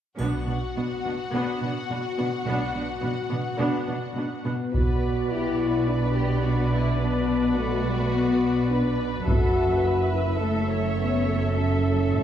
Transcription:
0.18 double bass section B1, cello section B2, viola section B3 D4, violin section F#4 F#5, triangle
0.47 cello section B2, viola section B3 D4
0.76 cello section B2, viola section B3 D4
1.04 cello section B2, viola section B3 D4
1.33 cello section B2, viola section B3 D4
1.61 cello section B2, viola section B3 D4
1.91 cello section B2, viola section B3 D4
2.18 cello section B2, viola section B3 D4
2.47 double bass section B1, cello section B2, viola section B3 D4
2.74 cello section B2, viola section B3 D4
3.01 cello section B2, viola section B3 D4
3.29 cello section B2, viola section B3 D4
3.58 cello section B2, viola section B3 D4
3.87 cello section B2, viola section B3 D4
4.16 cello section B2, viola section B3 D4
4.44 cello section B2, viola section B3 D4, french horn section B3
4.73 double bass section B1, cello section B2, french horn section F#4, viola section B4 D5, violin section B4, taiko
5.31 french horn section E4, violin section G4
5.59 violin section F#4
5.87 french horn section D4, violin section B4
6.15 violin section G4
6.43 french horn section D4, violin section F#4
6.72 violin section E4
7.00 french horn section B3, violin section D4
7.56 french horn section A3, violin section F#4
7.86 french horn section G3
8.00 french horn section A3
8.13 french horn section B3
8.70 french horn section D4, violin section B4
9.26 double bass section F#1, cello section F#2, french horn section F#4, violin section A4, viola section E5, taiko
9.83 violin section B4
10.13 french horn section E4
10.39 french horn section A3, violin section A4, viola section A4
10.68 violin section C#5
10.97 french horn section B3
11.26 french horn section A3
11.41 french horn section B3
11.54 french horn section C#4, violin section A4
12.12 cello section A2

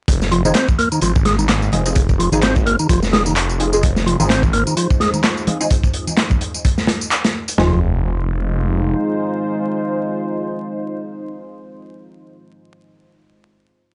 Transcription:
0.08 detuned saw bass F1, kick, closed hi-hat, tambourine
0.22 snare, tambourine
0.32 tonewheel organ F3, closed hi-hat
0.45 tonewheel organ D#3, synth stab C4 D#4 F4 G#4, tambourine, low conga
0.54 tonewheel organ C4, snare, clap, closed hi-hat, tambourine
0.68 kick, tambourine, low conga
0.79 tonewheel organ A#3, closed hi-hat
0.92 tonewheel organ D#3, tambourine
1.01 detuned saw bass G#1, tonewheel organ F3, closed hi-hat, tambourine
1.15 kick, tambourine
1.25 tonewheel organ G#3, snare, closed hi-hat
1.39 tonewheel organ D#3, tambourine, high conga
1.49 snare, clap, closed hi-hat, tambourine
1.62 tambourine
1.72 detuned saw bass F1, synth stab C4 D#4 F4 G#4, closed hi-hat, high conga, low conga
1.86 synth stab C4 D#4 F4 G#4, tambourine
1.95 kick, closed hi-hat, tambourine
2.09 kick, tambourine
2.19 tonewheel organ F3, closed hi-hat
2.32 detuned saw bass G#1, tonewheel organ D#3, synth stab C4 D#4 F4 G#4, tambourine, low conga
2.42 tonewheel organ C4, snare, clap, closed hi-hat, tambourine
2.56 kick, tambourine, high conga
2.66 tonewheel organ A#3, closed hi-hat
2.79 tonewheel organ D#3, tambourine
2.89 detuned saw bass F1, tonewheel organ F3, kick, closed hi-hat, tambourine
3.03 snare, tambourine
3.13 tonewheel organ G#3, snare, closed hi-hat, high conga
3.26 tonewheel organ D#3, tambourine
3.36 clap, closed hi-hat, tambourine
3.49 tambourine
3.60 synth stab C4 D#4 F4 G#4, closed hi-hat
3.73 synth stab C4 D#4 F4 G#4, tambourine
3.83 ambient pad G#3 D#4 F4 C5, kick, closed hi-hat, tambourine
3.96 snare, tambourine
4.06 tonewheel organ F3, closed hi-hat
4.20 detuned saw bass G#1, tonewheel organ D#3, synth stab C4 D#4 F4 G#4, tambourine, low conga
4.30 tonewheel organ C4, snare, clap, closed hi-hat, tambourine
4.43 kick, tambourine, low conga
4.53 tonewheel organ A#3, closed hi-hat
4.67 tonewheel organ D#3, tambourine
4.77 tonewheel organ F3, closed hi-hat, tambourine
4.90 kick, tambourine
5.00 tonewheel organ G#3, snare, closed hi-hat
5.14 tonewheel organ D#3, tambourine, high conga
5.23 snare, clap, closed hi-hat, tambourine
5.37 tambourine
5.47 synth stab C4 D#4 F4 G#4, closed hi-hat, high conga, low conga
5.60 synth stab C4 D#4 F4 G#4, tambourine
5.70 kick, closed hi-hat, tambourine
5.84 kick, tambourine
5.94 closed hi-hat
6.07 tambourine, low conga
6.17 snare, clap, closed hi-hat, tambourine
6.30 kick, tambourine, high conga, low conga
6.41 closed hi-hat
6.54 tambourine
6.65 kick, closed hi-hat, tambourine
6.78 snare, tambourine
6.87 snare, closed hi-hat, high conga
7.01 tambourine
7.11 clap, closed hi-hat, tambourine
7.24 snare, closed hi-hat, tambourine
7.48 closed hi-hat, tambourine
7.58 detuned saw bass F1, tonewheel organ F3, ambient pad G#3 D#4 F4 C5, synth stab C4 D#4 F4 G#4, snare, floor tom

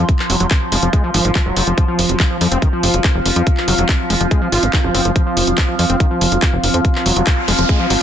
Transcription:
Already playing: synth drone F3, ambient pad C4 F4 F5 C6
0.09 kick, closed hi-hat
0.19 clap
0.30 analog synth bass F1, acid bass F#3, open hi-hat
0.40 analog synth bass F1, acid bass F#3, closed hi-hat
0.51 kick, clap, closed hi-hat
0.72 analog synth bass F1, acid bass G#3, open hi-hat
0.83 analog synth bass F1, acid bass F3, closed hi-hat
0.93 acid bass G#3, kick, closed hi-hat
1.04 acid bass F3
1.14 analog synth bass G#1, acid bass F3, open hi-hat
1.25 analog synth bass G#1, acid bass F3, closed hi-hat
1.35 acid bass F3, kick, clap, closed hi-hat
1.46 analog synth bass F1, acid bass F#3
1.57 analog synth bass F1, acid bass F#3, open hi-hat
1.67 analog synth bass F1, acid bass F3, closed hi-hat
1.78 acid bass F3, kick, closed hi-hat
1.88 acid bass F3
1.99 analog synth bass F1, open hi-hat
2.09 analog synth bass F1, acid bass F#3, closed hi-hat
2.20 acid bass F3, kick, clap, closed hi-hat
2.30 acid bass F3
2.41 analog synth bass F2, acid bass F3, open hi-hat
2.52 analog synth bass F1, acid bass C4, closed hi-hat
2.62 acid bass D#3, ambient pad F6, kick, closed hi-hat
2.73 acid bass F3
2.83 analog synth bass F1, open hi-hat
2.94 analog synth bass F1, acid bass F#3, closed hi-hat
3.04 kick, clap, closed hi-hat
3.15 analog synth bass F1
3.26 analog synth bass F1, open hi-hat
3.36 analog synth bass F2, acid bass F3, closed hi-hat
3.47 kick, closed hi-hat
3.57 clap
3.68 analog synth bass F1, acid bass F#3, open hi-hat
3.78 analog synth bass F1, acid bass F#3, closed hi-hat
3.89 kick, clap, closed hi-hat
4.10 analog synth bass F1, acid bass G#3, open hi-hat
4.21 analog synth bass F1, acid bass F3, closed hi-hat
4.31 acid bass G#3, kick, closed hi-hat
4.42 acid bass F3
4.52 analog synth bass G#1, acid bass F4, open hi-hat
4.63 analog synth bass G#1, acid bass G#3, closed hi-hat
4.73 acid bass D#3, kick, clap, closed hi-hat
4.84 analog synth bass F#1, acid bass F3
4.95 analog synth bass F#1, acid bass C4, open hi-hat
5.05 analog synth bass F#1, acid bass F3, closed hi-hat
5.16 acid bass F3, kick, closed hi-hat
5.26 acid bass F3
5.37 analog synth bass F1, open hi-hat
5.47 analog synth bass F1, acid bass F#3, closed hi-hat
5.58 acid bass F3, kick, clap, closed hi-hat
5.68 acid bass F3
5.79 analog synth bass F2, acid bass F3, open hi-hat
5.90 analog synth bass F1, acid bass C4, closed hi-hat
6.00 acid bass D#3, kick, closed hi-hat
6.11 acid bass F3
6.21 analog synth bass F1, open hi-hat
6.32 analog synth bass F1, acid bass F#3, closed hi-hat
6.42 kick, clap, closed hi-hat
6.53 analog synth bass F1
6.64 analog synth bass F1, open hi-hat
6.74 analog synth bass F2, acid bass F3, closed hi-hat
6.85 kick, closed hi-hat, noise sweep
6.95 clap
7.06 analog synth bass F1, acid bass F#3, open hi-hat
7.16 analog synth bass F1, acid bass F#3, closed hi-hat
7.27 kick, clap, closed hi-hat
7.48 analog synth bass F1, acid bass G#3, open hi-hat
7.59 analog synth bass F1, acid bass F3, closed hi-hat
7.69 acid bass G#3, kick, closed hi-hat
7.80 acid bass F3
7.90 analog synth bass G#1, acid bass F#3, open hi-hat

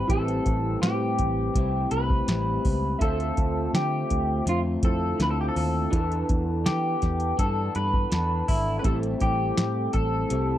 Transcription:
Already playing: clean electric guitar C4 E4
0.07 picked electric bass A1, clean electric guitar A2 G3 A4, synth keys E4 G4 B4, kick, closed hi-hat
0.12 clean electric guitar C4 E4, synth keys C4
0.28 closed hi-hat
0.46 picked electric bass A1, kick, closed hi-hat
0.82 picked electric bass A2, clean electric guitar G4, snare, closed hi-hat
1.19 picked electric bass A1, kick, closed hi-hat
1.54 picked electric bass C2, clean electric guitar A2 G3 C4 E4, kick, closed hi-hat
1.91 picked electric bass C2, clean electric guitar B4, closed hi-hat
2.10 kick
2.27 picked electric bass A1, clean electric guitar A2 G3 C4 E4, snare, closed hi-hat
2.65 picked electric bass C#2, kick, open hi-hat
2.98 picked electric bass D2, clean electric guitar D3 A3 A4, synth keys F4 A4 E5, kick, closed hi-hat
3.03 clean electric guitar C4 F4, synth keys C5
3.20 closed hi-hat
3.37 picked electric bass D2, kick, closed hi-hat
3.74 picked electric bass D3, clean electric guitar G4, snare, closed hi-hat
4.10 picked electric bass D2, kick, closed hi-hat
4.45 picked electric bass F2, clean electric guitar D3 A3 C4 F4, closed hi-hat
4.82 picked electric bass F2, synth keys E4 F4 A4 C5, clean electric guitar A4, kick, closed hi-hat
5.18 picked electric bass D2, clean electric guitar D3 A3 C4 F4, snare, closed hi-hat
5.22 clean electric guitar B4
5.31 clean electric guitar A4
5.41 clean electric guitar G4
5.48 clean electric guitar A4
5.56 picked electric bass D#2, clean electric guitar A4, open hi-hat
5.90 picked electric bass E2, clean electric guitar E3 B3, synth keys D4 E4 G#4, kick, closed hi-hat
5.95 clean electric guitar D4 A4, synth keys B4
6.00 synth keys A4
6.12 closed hi-hat
6.29 picked electric bass E2, kick, closed hi-hat
6.66 picked electric bass E3, clean electric guitar G4, snare, closed hi-hat
7.02 picked electric bass E2, kick, snare, closed hi-hat
7.20 closed hi-hat
7.37 picked electric bass G2, clean electric guitar E3 B3 D4 A4, kick, closed hi-hat
7.75 picked electric bass G2, clean electric guitar B4, closed hi-hat
7.94 kick
8.10 picked electric bass E2, clean electric guitar E3 B3 D4 A4, snare, closed hi-hat
8.48 picked electric bass G#1, clean electric guitar E4, kick, open hi-hat
8.79 clean electric guitar A2 B4, synth keys C4
8.83 picked electric bass A1, clean electric guitar G3 C4 A4, synth keys E4 G4 A4, kick, closed hi-hat
8.88 clean electric guitar E4
9.03 closed hi-hat
9.20 picked electric bass A1, clean electric guitar G4, kick, closed hi-hat
9.57 picked electric bass A2, snare, closed hi-hat
9.93 picked electric bass A1, clean electric guitar A4, kick, closed hi-hat
10.29 picked electric bass C2, clean electric guitar A2 G3 C4 E4, closed hi-hat

